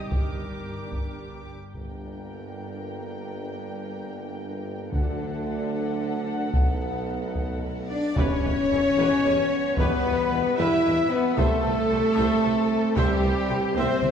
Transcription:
Already playing: D#3 G3 G4 D#5
0.10 G1 G2 D4 A#4 D6, taiko
0.92 D4, taiko
1.73 G1 G2 A#3 D4 A#4 G5, taiko
4.90 D2 D3 F#3 D4 A4 F#5, taiko
6.51 B1 B2 A3 D#4, taiko, reverse cymbal
7.35 taiko
7.88 D4 D5
8.15 E1 E2 G3 B3 C#4 G4 B4 C#5, taiko, impact
8.44 E1 E2 G4 B4
8.70 E1 E2 E4 G4
8.96 E1 E2 G4 B4
9.23 E1 E2 G4 B4
9.77 E1 E2 B3 G4 B4, taiko
10.04 E1 E2 G4 B4
10.31 E1 E2 E4 G4
10.57 E1 E2 E4 G4 B4 E5
10.83 E1 E2 G4 B4
11.10 B3 B4
11.35 C2 E3 A3 C4 A4 C5 E5, taiko
11.64 C2 C5 E5
11.90 C2 G4 C5
12.16 C2 C5 E5
12.43 C2 C5 E5
12.95 C2 G3 G4 C5 E5, taiko
13.23 C2 C5 E5
13.49 C2 G4 C5
13.75 C2 C4 C5 E5, taiko high
14.02 C2 C5 E5, taiko mid

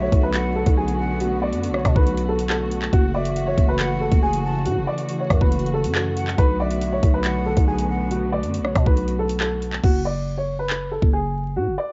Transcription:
Already playing: D3 A3 B3 F#4 E5
0.02 C#5
0.12 B1, kick, closed hi-hat
0.23 B4
0.34 F#5, clap, closed hi-hat
0.55 A4
0.66 B1, kick, closed hi-hat
0.77 G#4 G#5
0.88 closed hi-hat
0.99 F#5
1.20 F#4, closed hi-hat
1.42 D5
1.53 F#2, closed hi-hat
1.63 closed hi-hat
1.69 B1
1.74 C#5, cross-stick
1.85 B2, kick, cross-stick, closed hi-hat
1.96 B1 B4, kick
2.07 closed hi-hat
2.17 closed hi-hat
2.28 A4
2.39 closed hi-hat
2.50 A4, clap
2.71 closed hi-hat
2.82 clap
2.93 F#1 C#3 E3 F#4, kick, closed hi-hat
3.15 D5 E5
3.25 closed hi-hat
3.36 closed hi-hat
3.47 C#5
3.58 F#1, kick, closed hi-hat
3.68 B4
3.79 F#5, clap, closed hi-hat
4.01 A4
4.11 F#1, kick, closed hi-hat
4.23 G#4 G#5
4.33 closed hi-hat
4.44 A5
4.66 A2 F#4, closed hi-hat
4.76 F#1
4.87 D5
4.98 closed hi-hat
5.09 closed hi-hat
5.20 C#5
5.30 F#2, kick, cross-stick, closed hi-hat
5.41 F#1 B4, kick
5.52 closed hi-hat
5.59 closed hi-hat
5.66 closed hi-hat
5.73 A4
5.84 F#2, closed hi-hat
5.95 A4, clap
6.17 F#5, closed hi-hat
6.27 clap
6.38 B1 D3 A3 B3 B4, kick, closed hi-hat
6.60 D5 E5
6.71 closed hi-hat
6.81 closed hi-hat
6.92 C#5
7.03 B1, kick, closed hi-hat
7.14 B4
7.25 F#5, clap, closed hi-hat
7.46 A4
7.57 B1, kick, closed hi-hat
7.68 G#4 G#5
7.78 closed hi-hat
7.89 F#5
8.11 F#4, closed hi-hat
8.32 D5
8.43 F#2, closed hi-hat
8.54 closed hi-hat
8.59 B1
8.65 C#5, cross-stick
8.76 B2, kick, cross-stick, closed hi-hat
8.86 B1 B4, kick
8.97 closed hi-hat
9.08 closed hi-hat
9.19 A4
9.29 closed hi-hat
9.40 A4, clap
9.62 closed hi-hat
9.73 clap
9.84 F#1 F#4, kick, crash
10.05 D5
10.38 C#5
10.59 B4
10.70 clap
10.92 A4
11.02 F#1, kick
11.13 G#4
11.56 A2 F#4
11.67 F#1
11.78 D5

